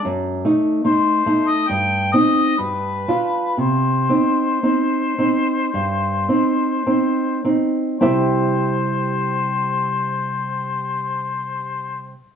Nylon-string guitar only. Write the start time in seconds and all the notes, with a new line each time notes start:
0.05 F#2
0.45 A3 D#4
0.84 A3 D#4
1.26 A3 D#4
1.69 G2
2.14 C4 D#4
2.58 G2
3.08 D4 F4
3.57 C3
4.09 C4 D#4
4.63 C4 D#4
5.18 C4 D#4
5.74 G2
6.29 C4 D#4
6.87 C4 D#4
7.44 C4 D#4
8.01 C3 G3 E4 G4 C5 E5